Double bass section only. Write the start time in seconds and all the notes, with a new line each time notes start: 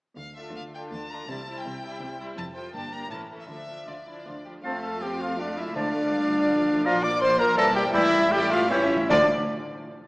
0.16 D2
0.54 D2
0.91 D2
1.28 C2
1.64 C2
2.01 C2
2.37 F1
2.74 G1
3.11 A1
3.49 D2
3.88 D2
4.26 D2
4.64 F2
5.76 D2
6.85 A#1
7.58 E1
7.94 A1
9.10 D2